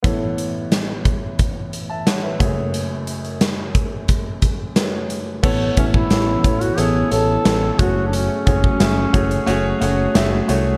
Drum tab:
CC |----------------|----------------|x---------------|----------------|
HH |x-x-x-x-x-x-x-x-|x-xxx-x-x-x-x-x-|--x-x-xxx-x-x-x-|x-x-x-xxx-x-x-x-|
SD |----o-------o---|----o-------o---|----o-------o---|----o-------o---|
BD |o-----o-o-----o-|------o-o-o-----|o-oo--o-------o-|--oo--o---------|